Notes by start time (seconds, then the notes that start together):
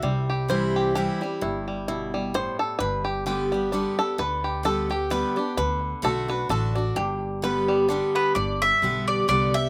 Already playing: E5
0.02 C2 C3 G3
0.30 G4
0.48 E3 G3 C4 E4 C5
0.76 G4
0.95 E3 G3 C4 E4 G4
1.21 G3 C4 E4
1.41 G1 G2 E4
1.68 G3
1.88 B2 E4
2.14 G3
2.34 A2 C5
2.59 A4
2.79 G1 G2 B4
3.05 G4
3.26 D3 G3 B3 G4
3.52 G3 B3 G4
3.72 D3 G3 B3 D4 G4
3.99 B3 G4 A4
4.18 D2 D3 B4
4.44 G4
4.63 D3 G3 B3 G4 A4
4.90 B3 G4
5.10 D3 G3 B3 G4 B4
5.36 B3 D4 G4
5.57 D2 D3 B4
6.02 B1 D3 A3 D4 F#4 A4
6.28 D4 F#4 B4
6.49 A1 D3 A3 D4 F#4 A4
6.75 D4 F#4
6.96 G1 G2 G4
7.42 D3 G3 B3 G4 B4
7.68 G3
7.89 D3 G3 B3 D4 G4
8.15 B3 B4
8.35 G1 G2 D5
8.62 E5
8.82 B1 D3 G3 B3 G4
9.08 D5
9.28 C2 D3 G3 B3 G4 D5
9.54 B3 G4 E5